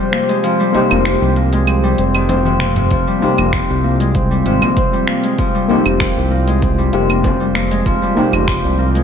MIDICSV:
0, 0, Header, 1, 7, 480
1, 0, Start_track
1, 0, Key_signature, -4, "minor"
1, 0, Tempo, 618557
1, 341, Time_signature, 4, 2, 24, 8
1, 7010, End_track
2, 0, Start_track
2, 0, Title_t, "Ambient pad"
2, 0, Program_c, 0, 92
2, 0, Note_on_c, 0, 53, 86
2, 0, Note_on_c, 0, 60, 83
2, 0, Note_on_c, 0, 67, 77
2, 0, Note_on_c, 0, 72, 94
2, 2228, Note_off_c, 0, 67, 0
2, 2254, Note_off_c, 0, 72, 0
2, 2260, Note_on_c, 0, 65, 81
2, 7010, Note_off_c, 0, 53, 0
2, 7010, Note_off_c, 0, 60, 0
2, 7010, Note_off_c, 0, 65, 0
2, 7010, End_track
3, 0, Start_track
3, 0, Title_t, "Synth stab"
3, 0, Program_c, 1, 62
3, 0, Note_on_c, 1, 58, 84
3, 0, Note_on_c, 1, 63, 76
3, 0, Note_on_c, 1, 67, 90
3, 547, Note_off_c, 1, 58, 0
3, 554, Note_off_c, 1, 63, 0
3, 562, Note_off_c, 1, 67, 0
3, 563, Note_on_c, 1, 58, 94
3, 579, Note_on_c, 1, 63, 83
3, 594, Note_on_c, 1, 67, 106
3, 1505, Note_off_c, 1, 58, 0
3, 1513, Note_off_c, 1, 63, 0
3, 1520, Note_off_c, 1, 67, 0
3, 2485, Note_on_c, 1, 58, 77
3, 2501, Note_on_c, 1, 63, 75
3, 2517, Note_on_c, 1, 67, 92
3, 4386, Note_off_c, 1, 58, 0
3, 4394, Note_off_c, 1, 63, 0
3, 4402, Note_off_c, 1, 67, 0
3, 4408, Note_on_c, 1, 58, 99
3, 4423, Note_on_c, 1, 63, 89
3, 4438, Note_on_c, 1, 67, 101
3, 5347, Note_off_c, 1, 58, 0
3, 5355, Note_off_c, 1, 63, 0
3, 5362, Note_off_c, 1, 67, 0
3, 5374, Note_on_c, 1, 58, 86
3, 5381, Note_on_c, 1, 63, 74
3, 5389, Note_on_c, 1, 67, 89
3, 5587, Note_off_c, 1, 58, 0
3, 5591, Note_off_c, 1, 63, 0
3, 5595, Note_off_c, 1, 67, 0
3, 6323, Note_on_c, 1, 58, 81
3, 6339, Note_on_c, 1, 63, 75
3, 6355, Note_on_c, 1, 67, 92
3, 7010, Note_off_c, 1, 58, 0
3, 7010, Note_off_c, 1, 63, 0
3, 7010, Note_off_c, 1, 67, 0
3, 7010, End_track
4, 0, Start_track
4, 0, Title_t, "Harp"
4, 0, Program_c, 2, 46
4, 0, Note_on_c, 2, 48, 105
4, 0, Note_on_c, 2, 55, 75
4, 0, Note_on_c, 2, 56, 104
4, 0, Note_on_c, 2, 58, 78
4, 0, Note_on_c, 2, 60, 101
4, 96, Note_off_c, 2, 58, 0
4, 99, Note_on_c, 2, 58, 72
4, 215, Note_off_c, 2, 56, 0
4, 224, Note_on_c, 2, 56, 99
4, 337, Note_on_c, 2, 53, 101
4, 455, Note_off_c, 2, 55, 0
4, 464, Note_on_c, 2, 55, 105
4, 569, Note_off_c, 2, 48, 0
4, 578, Note_on_c, 2, 48, 104
4, 620, Note_off_c, 2, 53, 0
4, 702, Note_off_c, 2, 58, 0
4, 705, Note_on_c, 2, 58, 71
4, 814, Note_off_c, 2, 60, 0
4, 817, Note_on_c, 2, 60, 79
4, 935, Note_off_c, 2, 55, 0
4, 944, Note_on_c, 2, 55, 68
4, 1056, Note_off_c, 2, 58, 0
4, 1059, Note_on_c, 2, 58, 76
4, 1175, Note_off_c, 2, 56, 0
4, 1184, Note_on_c, 2, 56, 106
4, 1295, Note_off_c, 2, 60, 0
4, 1298, Note_on_c, 2, 60, 72
4, 1415, Note_off_c, 2, 55, 0
4, 1425, Note_on_c, 2, 55, 104
4, 1538, Note_off_c, 2, 60, 0
4, 1541, Note_on_c, 2, 60, 78
4, 1666, Note_on_c, 2, 51, 92
4, 1700, Note_off_c, 2, 48, 0
4, 1700, Note_off_c, 2, 55, 0
4, 1700, Note_off_c, 2, 56, 0
4, 1775, Note_off_c, 2, 60, 0
4, 1779, Note_on_c, 2, 60, 104
4, 1905, Note_on_c, 2, 48, 76
4, 1940, Note_off_c, 2, 51, 0
4, 2015, Note_off_c, 2, 58, 0
4, 2018, Note_on_c, 2, 58, 75
4, 2136, Note_off_c, 2, 48, 0
4, 2146, Note_on_c, 2, 48, 77
4, 2257, Note_on_c, 2, 53, 102
4, 2385, Note_on_c, 2, 55, 99
4, 2489, Note_off_c, 2, 48, 0
4, 2498, Note_on_c, 2, 48, 100
4, 2540, Note_off_c, 2, 53, 0
4, 2622, Note_off_c, 2, 58, 0
4, 2625, Note_on_c, 2, 58, 73
4, 2735, Note_off_c, 2, 60, 0
4, 2854, Note_off_c, 2, 55, 0
4, 2863, Note_on_c, 2, 55, 70
4, 2976, Note_off_c, 2, 58, 0
4, 2979, Note_on_c, 2, 58, 74
4, 3104, Note_on_c, 2, 56, 98
4, 3217, Note_on_c, 2, 60, 77
4, 3334, Note_off_c, 2, 55, 0
4, 3344, Note_on_c, 2, 55, 90
4, 3448, Note_off_c, 2, 48, 0
4, 3457, Note_on_c, 2, 48, 101
4, 3580, Note_off_c, 2, 58, 0
4, 3583, Note_on_c, 2, 58, 72
4, 3695, Note_off_c, 2, 60, 0
4, 3698, Note_on_c, 2, 60, 99
4, 3816, Note_off_c, 2, 55, 0
4, 3826, Note_on_c, 2, 55, 75
4, 3936, Note_off_c, 2, 58, 0
4, 3939, Note_on_c, 2, 58, 80
4, 4056, Note_off_c, 2, 56, 0
4, 4065, Note_on_c, 2, 56, 94
4, 4179, Note_on_c, 2, 53, 103
4, 4295, Note_off_c, 2, 55, 0
4, 4304, Note_on_c, 2, 55, 97
4, 4409, Note_off_c, 2, 48, 0
4, 4418, Note_on_c, 2, 48, 106
4, 4460, Note_off_c, 2, 53, 0
4, 4543, Note_off_c, 2, 58, 0
4, 4546, Note_on_c, 2, 58, 79
4, 4656, Note_off_c, 2, 60, 0
4, 4659, Note_on_c, 2, 60, 73
4, 4776, Note_off_c, 2, 55, 0
4, 4785, Note_on_c, 2, 55, 72
4, 4894, Note_off_c, 2, 58, 0
4, 4897, Note_on_c, 2, 58, 77
4, 5015, Note_off_c, 2, 56, 0
4, 5024, Note_on_c, 2, 56, 103
4, 5134, Note_off_c, 2, 60, 0
4, 5137, Note_on_c, 2, 60, 73
4, 5255, Note_off_c, 2, 55, 0
4, 5264, Note_on_c, 2, 55, 94
4, 5369, Note_off_c, 2, 48, 0
4, 5378, Note_on_c, 2, 48, 100
4, 5502, Note_off_c, 2, 58, 0
4, 5506, Note_on_c, 2, 58, 74
4, 5615, Note_off_c, 2, 60, 0
4, 5618, Note_on_c, 2, 60, 100
4, 5734, Note_off_c, 2, 55, 0
4, 5743, Note_on_c, 2, 55, 77
4, 5856, Note_off_c, 2, 58, 0
4, 5859, Note_on_c, 2, 58, 77
4, 5975, Note_off_c, 2, 56, 0
4, 5984, Note_on_c, 2, 56, 103
4, 6099, Note_on_c, 2, 53, 107
4, 6215, Note_off_c, 2, 55, 0
4, 6225, Note_on_c, 2, 55, 98
4, 6331, Note_off_c, 2, 48, 0
4, 6340, Note_on_c, 2, 48, 100
4, 6380, Note_off_c, 2, 53, 0
4, 6464, Note_off_c, 2, 58, 0
4, 6467, Note_on_c, 2, 58, 80
4, 6576, Note_off_c, 2, 60, 0
4, 6579, Note_on_c, 2, 60, 76
4, 6697, Note_off_c, 2, 55, 0
4, 6707, Note_on_c, 2, 55, 66
4, 6816, Note_off_c, 2, 58, 0
4, 6819, Note_on_c, 2, 58, 81
4, 6936, Note_off_c, 2, 56, 0
4, 6946, Note_on_c, 2, 56, 96
4, 7010, Note_off_c, 2, 48, 0
4, 7010, Note_off_c, 2, 55, 0
4, 7010, Note_off_c, 2, 56, 0
4, 7010, Note_off_c, 2, 58, 0
4, 7010, Note_off_c, 2, 60, 0
4, 7010, End_track
5, 0, Start_track
5, 0, Title_t, "Analog synth bass"
5, 0, Program_c, 3, 38
5, 708, Note_on_c, 3, 29, 98
5, 906, Note_off_c, 3, 29, 0
5, 948, Note_on_c, 3, 36, 99
5, 1511, Note_off_c, 3, 36, 0
5, 1542, Note_on_c, 3, 29, 86
5, 2231, Note_off_c, 3, 29, 0
5, 2261, Note_on_c, 3, 29, 100
5, 2366, Note_off_c, 3, 29, 0
5, 2629, Note_on_c, 3, 29, 100
5, 2826, Note_off_c, 3, 29, 0
5, 2869, Note_on_c, 3, 36, 107
5, 3431, Note_off_c, 3, 36, 0
5, 3461, Note_on_c, 3, 32, 85
5, 3566, Note_off_c, 3, 32, 0
5, 4548, Note_on_c, 3, 29, 99
5, 4745, Note_off_c, 3, 29, 0
5, 4788, Note_on_c, 3, 36, 110
5, 5351, Note_off_c, 3, 36, 0
5, 5381, Note_on_c, 3, 29, 86
5, 6071, Note_off_c, 3, 29, 0
5, 6101, Note_on_c, 3, 29, 101
5, 6206, Note_off_c, 3, 29, 0
5, 6465, Note_on_c, 3, 29, 102
5, 6664, Note_off_c, 3, 29, 0
5, 6706, Note_on_c, 3, 36, 108
5, 7010, Note_off_c, 3, 36, 0
5, 7010, End_track
6, 0, Start_track
6, 0, Title_t, "Frame drum"
6, 579, Note_on_c, 9, 64, 81
6, 657, Note_off_c, 9, 64, 0
6, 706, Note_on_c, 9, 64, 73
6, 783, Note_off_c, 9, 64, 0
6, 1776, Note_on_c, 9, 64, 88
6, 1854, Note_off_c, 9, 64, 0
6, 2500, Note_on_c, 9, 64, 76
6, 2578, Note_off_c, 9, 64, 0
6, 2630, Note_on_c, 9, 64, 81
6, 2708, Note_off_c, 9, 64, 0
6, 3581, Note_on_c, 9, 64, 87
6, 3658, Note_off_c, 9, 64, 0
6, 4426, Note_on_c, 9, 64, 85
6, 4503, Note_off_c, 9, 64, 0
6, 5620, Note_on_c, 9, 64, 99
6, 5697, Note_off_c, 9, 64, 0
6, 6338, Note_on_c, 9, 64, 89
6, 6415, Note_off_c, 9, 64, 0
6, 6467, Note_on_c, 9, 64, 72
6, 6545, Note_off_c, 9, 64, 0
6, 7010, End_track
7, 0, Start_track
7, 0, Title_t, "Drums"
7, 100, Note_on_c, 9, 26, 73
7, 100, Note_on_c, 9, 42, 30
7, 178, Note_off_c, 9, 26, 0
7, 178, Note_off_c, 9, 42, 0
7, 228, Note_on_c, 9, 42, 43
7, 230, Note_on_c, 9, 82, 66
7, 305, Note_off_c, 9, 42, 0
7, 308, Note_off_c, 9, 82, 0
7, 341, Note_on_c, 9, 42, 60
7, 344, Note_on_c, 9, 82, 55
7, 419, Note_off_c, 9, 42, 0
7, 422, Note_off_c, 9, 82, 0
7, 470, Note_on_c, 9, 82, 31
7, 548, Note_off_c, 9, 82, 0
7, 579, Note_on_c, 9, 42, 33
7, 656, Note_off_c, 9, 42, 0
7, 706, Note_on_c, 9, 42, 44
7, 706, Note_on_c, 9, 75, 76
7, 708, Note_on_c, 9, 82, 59
7, 783, Note_off_c, 9, 42, 0
7, 783, Note_off_c, 9, 75, 0
7, 786, Note_off_c, 9, 82, 0
7, 818, Note_on_c, 9, 26, 73
7, 818, Note_on_c, 9, 42, 58
7, 821, Note_on_c, 9, 82, 52
7, 896, Note_off_c, 9, 26, 0
7, 896, Note_off_c, 9, 42, 0
7, 898, Note_off_c, 9, 82, 0
7, 949, Note_on_c, 9, 82, 31
7, 1026, Note_off_c, 9, 82, 0
7, 1059, Note_on_c, 9, 42, 32
7, 1136, Note_off_c, 9, 42, 0
7, 1185, Note_on_c, 9, 42, 45
7, 1188, Note_on_c, 9, 82, 64
7, 1263, Note_off_c, 9, 42, 0
7, 1265, Note_off_c, 9, 82, 0
7, 1298, Note_on_c, 9, 42, 59
7, 1298, Note_on_c, 9, 75, 68
7, 1301, Note_on_c, 9, 82, 54
7, 1376, Note_off_c, 9, 42, 0
7, 1376, Note_off_c, 9, 75, 0
7, 1379, Note_off_c, 9, 82, 0
7, 1428, Note_on_c, 9, 82, 30
7, 1506, Note_off_c, 9, 82, 0
7, 1539, Note_on_c, 9, 42, 59
7, 1617, Note_off_c, 9, 42, 0
7, 1665, Note_on_c, 9, 42, 47
7, 1665, Note_on_c, 9, 75, 61
7, 1668, Note_on_c, 9, 82, 60
7, 1743, Note_off_c, 9, 42, 0
7, 1743, Note_off_c, 9, 75, 0
7, 1746, Note_off_c, 9, 82, 0
7, 1779, Note_on_c, 9, 42, 53
7, 1781, Note_on_c, 9, 82, 49
7, 1856, Note_off_c, 9, 42, 0
7, 1859, Note_off_c, 9, 82, 0
7, 1905, Note_on_c, 9, 48, 51
7, 1907, Note_on_c, 9, 82, 32
7, 1982, Note_off_c, 9, 48, 0
7, 1985, Note_off_c, 9, 82, 0
7, 2018, Note_on_c, 9, 26, 80
7, 2018, Note_on_c, 9, 42, 29
7, 2018, Note_on_c, 9, 47, 68
7, 2095, Note_off_c, 9, 26, 0
7, 2095, Note_off_c, 9, 42, 0
7, 2095, Note_off_c, 9, 47, 0
7, 2144, Note_on_c, 9, 42, 46
7, 2144, Note_on_c, 9, 45, 76
7, 2146, Note_on_c, 9, 82, 62
7, 2221, Note_off_c, 9, 42, 0
7, 2221, Note_off_c, 9, 45, 0
7, 2224, Note_off_c, 9, 82, 0
7, 2256, Note_on_c, 9, 42, 57
7, 2258, Note_on_c, 9, 82, 56
7, 2260, Note_on_c, 9, 36, 97
7, 2333, Note_off_c, 9, 42, 0
7, 2336, Note_off_c, 9, 82, 0
7, 2338, Note_off_c, 9, 36, 0
7, 2384, Note_on_c, 9, 82, 33
7, 2462, Note_off_c, 9, 82, 0
7, 2625, Note_on_c, 9, 42, 43
7, 2625, Note_on_c, 9, 75, 71
7, 2628, Note_on_c, 9, 82, 61
7, 2702, Note_off_c, 9, 42, 0
7, 2702, Note_off_c, 9, 75, 0
7, 2705, Note_off_c, 9, 82, 0
7, 2738, Note_on_c, 9, 26, 76
7, 2738, Note_on_c, 9, 42, 56
7, 2740, Note_on_c, 9, 36, 106
7, 2741, Note_on_c, 9, 82, 54
7, 2816, Note_off_c, 9, 26, 0
7, 2816, Note_off_c, 9, 42, 0
7, 2818, Note_off_c, 9, 36, 0
7, 2818, Note_off_c, 9, 82, 0
7, 2868, Note_on_c, 9, 82, 33
7, 2946, Note_off_c, 9, 82, 0
7, 3106, Note_on_c, 9, 42, 44
7, 3109, Note_on_c, 9, 82, 64
7, 3184, Note_off_c, 9, 42, 0
7, 3186, Note_off_c, 9, 82, 0
7, 3219, Note_on_c, 9, 42, 63
7, 3221, Note_on_c, 9, 36, 103
7, 3222, Note_on_c, 9, 82, 55
7, 3297, Note_off_c, 9, 42, 0
7, 3298, Note_off_c, 9, 36, 0
7, 3299, Note_off_c, 9, 82, 0
7, 3349, Note_on_c, 9, 82, 33
7, 3427, Note_off_c, 9, 82, 0
7, 3460, Note_on_c, 9, 42, 52
7, 3537, Note_off_c, 9, 42, 0
7, 3586, Note_on_c, 9, 42, 46
7, 3586, Note_on_c, 9, 75, 62
7, 3589, Note_on_c, 9, 82, 71
7, 3663, Note_off_c, 9, 42, 0
7, 3663, Note_off_c, 9, 75, 0
7, 3666, Note_off_c, 9, 82, 0
7, 3700, Note_on_c, 9, 42, 59
7, 3701, Note_on_c, 9, 36, 104
7, 3702, Note_on_c, 9, 82, 54
7, 3777, Note_off_c, 9, 42, 0
7, 3778, Note_off_c, 9, 36, 0
7, 3780, Note_off_c, 9, 82, 0
7, 3828, Note_on_c, 9, 82, 32
7, 3906, Note_off_c, 9, 82, 0
7, 3938, Note_on_c, 9, 26, 76
7, 3938, Note_on_c, 9, 42, 30
7, 4016, Note_off_c, 9, 26, 0
7, 4016, Note_off_c, 9, 42, 0
7, 4064, Note_on_c, 9, 42, 47
7, 4066, Note_on_c, 9, 82, 68
7, 4141, Note_off_c, 9, 42, 0
7, 4144, Note_off_c, 9, 82, 0
7, 4179, Note_on_c, 9, 42, 57
7, 4181, Note_on_c, 9, 36, 106
7, 4181, Note_on_c, 9, 82, 61
7, 4256, Note_off_c, 9, 42, 0
7, 4258, Note_off_c, 9, 36, 0
7, 4259, Note_off_c, 9, 82, 0
7, 4307, Note_on_c, 9, 82, 34
7, 4384, Note_off_c, 9, 82, 0
7, 4545, Note_on_c, 9, 42, 41
7, 4545, Note_on_c, 9, 75, 72
7, 4547, Note_on_c, 9, 82, 64
7, 4622, Note_off_c, 9, 42, 0
7, 4622, Note_off_c, 9, 75, 0
7, 4625, Note_off_c, 9, 82, 0
7, 4657, Note_on_c, 9, 26, 80
7, 4657, Note_on_c, 9, 42, 56
7, 4660, Note_on_c, 9, 36, 115
7, 4660, Note_on_c, 9, 82, 57
7, 4735, Note_off_c, 9, 26, 0
7, 4735, Note_off_c, 9, 42, 0
7, 4738, Note_off_c, 9, 36, 0
7, 4738, Note_off_c, 9, 82, 0
7, 4788, Note_on_c, 9, 82, 33
7, 4866, Note_off_c, 9, 82, 0
7, 5026, Note_on_c, 9, 42, 46
7, 5028, Note_on_c, 9, 82, 65
7, 5103, Note_off_c, 9, 42, 0
7, 5106, Note_off_c, 9, 82, 0
7, 5140, Note_on_c, 9, 42, 62
7, 5141, Note_on_c, 9, 36, 104
7, 5143, Note_on_c, 9, 82, 56
7, 5218, Note_off_c, 9, 36, 0
7, 5218, Note_off_c, 9, 42, 0
7, 5220, Note_off_c, 9, 82, 0
7, 5269, Note_on_c, 9, 82, 34
7, 5347, Note_off_c, 9, 82, 0
7, 5379, Note_on_c, 9, 42, 51
7, 5456, Note_off_c, 9, 42, 0
7, 5508, Note_on_c, 9, 42, 44
7, 5508, Note_on_c, 9, 75, 58
7, 5510, Note_on_c, 9, 82, 67
7, 5585, Note_off_c, 9, 42, 0
7, 5585, Note_off_c, 9, 75, 0
7, 5588, Note_off_c, 9, 82, 0
7, 5620, Note_on_c, 9, 36, 105
7, 5622, Note_on_c, 9, 42, 54
7, 5624, Note_on_c, 9, 82, 53
7, 5698, Note_off_c, 9, 36, 0
7, 5699, Note_off_c, 9, 42, 0
7, 5702, Note_off_c, 9, 82, 0
7, 5750, Note_on_c, 9, 82, 33
7, 5828, Note_off_c, 9, 82, 0
7, 5860, Note_on_c, 9, 26, 77
7, 5860, Note_on_c, 9, 42, 32
7, 5938, Note_off_c, 9, 26, 0
7, 5938, Note_off_c, 9, 42, 0
7, 5987, Note_on_c, 9, 42, 47
7, 5990, Note_on_c, 9, 82, 70
7, 6065, Note_off_c, 9, 42, 0
7, 6067, Note_off_c, 9, 82, 0
7, 6100, Note_on_c, 9, 36, 109
7, 6100, Note_on_c, 9, 42, 53
7, 6102, Note_on_c, 9, 82, 61
7, 6177, Note_off_c, 9, 42, 0
7, 6178, Note_off_c, 9, 36, 0
7, 6180, Note_off_c, 9, 82, 0
7, 6230, Note_on_c, 9, 82, 34
7, 6308, Note_off_c, 9, 82, 0
7, 6466, Note_on_c, 9, 42, 39
7, 6466, Note_on_c, 9, 75, 73
7, 6469, Note_on_c, 9, 82, 67
7, 6544, Note_off_c, 9, 42, 0
7, 6544, Note_off_c, 9, 75, 0
7, 6546, Note_off_c, 9, 82, 0
7, 6579, Note_on_c, 9, 26, 81
7, 6579, Note_on_c, 9, 42, 55
7, 6580, Note_on_c, 9, 36, 107
7, 6582, Note_on_c, 9, 82, 58
7, 6657, Note_off_c, 9, 26, 0
7, 6657, Note_off_c, 9, 36, 0
7, 6657, Note_off_c, 9, 42, 0
7, 6659, Note_off_c, 9, 82, 0
7, 6710, Note_on_c, 9, 82, 32
7, 6788, Note_off_c, 9, 82, 0
7, 6948, Note_on_c, 9, 42, 43
7, 6951, Note_on_c, 9, 82, 68
7, 7010, Note_off_c, 9, 42, 0
7, 7010, Note_off_c, 9, 82, 0
7, 7010, End_track
0, 0, End_of_file